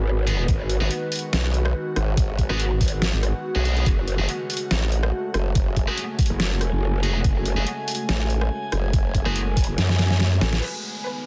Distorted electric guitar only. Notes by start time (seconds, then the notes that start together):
0.27 B3 F#4 G#4
0.81 B3 F#4 G#4
2.50 B3 F#4 G#4
3.55 B3 F#4 G#4
4.19 A3 F#4 G#4
5.88 A3 F#4 G#4
7.03 A3 F#4 G#4
7.57 A3 F#4 G#4
9.26 A3 F#4 G#4